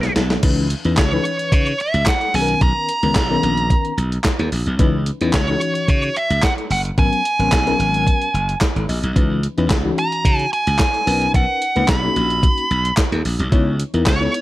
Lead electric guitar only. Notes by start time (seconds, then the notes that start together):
Already playing: B4
0.99 C#5
1.54 C#5
1.81 E5
2.08 F#5
2.35 G#5
2.62 A#5
5.35 C#5
5.90 C#5
6.17 E5
6.45 F#5
6.72 F#5
6.99 G#5
9.99 A#5
10.53 G#5
11.35 F#5
11.90 B5
14.08 C#5